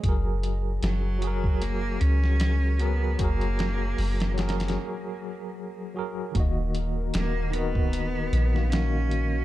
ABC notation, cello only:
X:1
M:4/4
L:1/8
Q:"Swing 16ths" 1/4=76
K:Ebm
V:1 name="Cello"
z2 G,2 B, D2 C | B,4 z4 | z2 B, C3 D2 |]